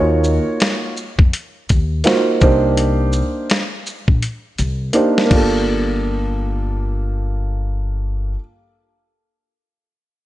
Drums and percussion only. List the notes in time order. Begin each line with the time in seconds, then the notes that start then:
0.24 shaker
0.60 snare, closed hi-hat
0.97 shaker
1.19 kick
1.33 closed hi-hat
1.69 kick, closed hi-hat, shaker
2.04 snare, closed hi-hat
2.41 kick, shaker
2.77 closed hi-hat
3.13 shaker
3.50 snare, closed hi-hat
3.86 shaker
4.08 kick
4.23 closed hi-hat
4.58 closed hi-hat, shaker
4.93 closed hi-hat
5.18 snare
5.31 kick, crash